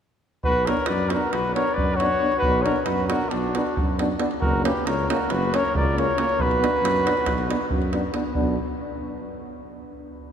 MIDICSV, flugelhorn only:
0, 0, Header, 1, 2, 480
1, 0, Start_track
1, 0, Key_signature, 2, "minor"
1, 0, Tempo, 439560
1, 489, Time_signature, 9, 3, 24, 8
1, 7212, Tempo, 433526
1, 11329, End_track
2, 0, Start_track
2, 0, Title_t, "Flugelhorn"
2, 0, Program_c, 0, 56
2, 486, Note_on_c, 0, 71, 105
2, 740, Note_on_c, 0, 73, 78
2, 757, Note_off_c, 0, 71, 0
2, 951, Note_on_c, 0, 74, 78
2, 967, Note_off_c, 0, 73, 0
2, 1227, Note_on_c, 0, 70, 75
2, 1244, Note_off_c, 0, 74, 0
2, 1433, Note_on_c, 0, 71, 86
2, 1449, Note_off_c, 0, 70, 0
2, 1678, Note_off_c, 0, 71, 0
2, 1685, Note_on_c, 0, 73, 84
2, 1892, Note_on_c, 0, 74, 77
2, 1908, Note_off_c, 0, 73, 0
2, 2140, Note_on_c, 0, 73, 103
2, 2156, Note_off_c, 0, 74, 0
2, 2595, Note_off_c, 0, 73, 0
2, 2601, Note_on_c, 0, 71, 105
2, 2860, Note_on_c, 0, 73, 79
2, 2876, Note_off_c, 0, 71, 0
2, 3089, Note_off_c, 0, 73, 0
2, 3089, Note_on_c, 0, 73, 66
2, 3117, Note_on_c, 0, 71, 74
2, 3134, Note_off_c, 0, 73, 0
2, 3375, Note_off_c, 0, 71, 0
2, 3381, Note_on_c, 0, 70, 60
2, 3627, Note_on_c, 0, 66, 64
2, 3643, Note_off_c, 0, 70, 0
2, 4359, Note_off_c, 0, 66, 0
2, 4814, Note_on_c, 0, 70, 79
2, 5052, Note_off_c, 0, 70, 0
2, 5072, Note_on_c, 0, 71, 68
2, 5314, Note_on_c, 0, 73, 81
2, 5331, Note_off_c, 0, 71, 0
2, 5547, Note_off_c, 0, 73, 0
2, 5554, Note_on_c, 0, 70, 70
2, 5794, Note_on_c, 0, 71, 86
2, 5811, Note_off_c, 0, 70, 0
2, 6054, Note_on_c, 0, 73, 97
2, 6071, Note_off_c, 0, 71, 0
2, 6274, Note_off_c, 0, 73, 0
2, 6280, Note_on_c, 0, 74, 81
2, 6525, Note_on_c, 0, 73, 95
2, 6541, Note_off_c, 0, 74, 0
2, 6994, Note_on_c, 0, 71, 99
2, 7011, Note_off_c, 0, 73, 0
2, 8699, Note_off_c, 0, 71, 0
2, 11329, End_track
0, 0, End_of_file